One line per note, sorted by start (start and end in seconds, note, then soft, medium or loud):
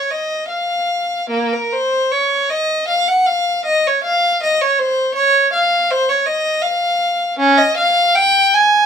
0.00 0.11 C#5 medium
0.10 0.49 D#5 medium
0.49 1.28 F5 medium
1.30 1.50 A#3 medium
1.53 1.72 A#4 medium
1.73 2.12 C5 medium
2.12 2.50 C#5 medium
2.50 2.89 D#5 medium
2.88 3.07 F5 medium
3.08 3.27 F#5 medium
3.26 3.65 F5 medium
3.65 3.84 D#5 medium
3.87 4.04 C#5 medium
4.04 4.40 F5 medium
4.43 4.60 D#5 medium
4.62 4.79 C#5 medium
4.79 5.15 C5 medium
5.15 5.51 C#5 medium
5.53 5.89 F5 medium
5.91 6.09 C5 medium
6.09 6.27 C#5 medium
6.26 6.64 D#5 medium
6.61 7.39 F5 medium
7.39 7.58 C#4 medium
7.58 7.78 D#5 medium
7.77 8.15 F5 medium
8.16 8.55 G5 medium
8.54 8.86 G#5 medium